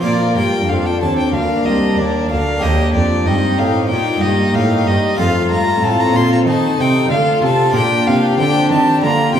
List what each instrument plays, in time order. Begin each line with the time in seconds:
0.00 harpsichord A#2 A#3 F4 A#4, violin section A#4
0.04 cello section A#2, viola section A#3, violin section F4, violin D5
0.36 harpsichord G2, cello section G2, violin G5
0.68 cello section F2, harpsichord F2, viola section C4, violin section D4 A4, violin F5
0.86 violin G5
1.01 cello section D#2, harpsichord D#2, violin A5
1.18 violin G5
1.33 cello section D2, harpsichord D2, viola section A#3, violin section A#4, violin F5
1.65 cello section C2, harpsichord C2, violin D#5
1.97 harpsichord D#2, cello section D#2, violin D5
2.30 harpsichord D2, cello section D2, violin F5
2.58 harpsichord A#3 G4 A#4, violin D#5
2.63 cello section D#2, harpsichord D#2, viola section A#3, violin section G4
2.94 cello section F2, harpsichord F2, violin D5
3.26 harpsichord G2, cello section G2, viola section C4, violin section D#4 G4, violin D#5
3.59 harpsichord A2, cello section A2, violin F5
3.89 cello section A#2, harpsichord A#2, viola section A#3, violin section D#4 G4, violin G5
4.22 cello section G2, harpsichord G2, violin D#5
4.54 cello section A2, harpsichord A2, violin section G4, violin F5
4.86 cello section G2, harpsichord G2, violin D#5
5.15 cello section F2, viola section A3, harpsichord D#4 F4 A4, violin section F4 A4, violin F5
5.20 harpsichord F2
5.51 cello section G2, harpsichord G2, violin A#5
5.82 cello section A2, harpsichord A2, viola section C4, violin section F4, violin A5
6.00 violin A#5
6.15 harpsichord A#2, cello section A#2, violin C6
6.33 violin A#5
6.47 cello section D#3, harpsichord D#3, violin section D#4, violin A5
6.78 harpsichord C3, cello section C3, violin G5
7.10 harpsichord D3, cello section D3, viola section A3, violin section F4 A4, violin F5
7.42 harpsichord C3, cello section C3, violin A5
7.70 harpsichord D4 F4 A#4
7.74 harpsichord A#2, cello section A#2, viola section A#3, violin section D4 G4, violin G5
8.07 cello section C3, harpsichord C3, violin F5
8.39 harpsichord D3, cello section D3, viola section C4, violin section D4, violin G5
8.70 harpsichord D#3, cello section D#3, violin A5
9.02 harpsichord D3, cello section D3, viola section A#3, violin section F4, violin A#5
9.34 harpsichord C3, cello section C3, violin G5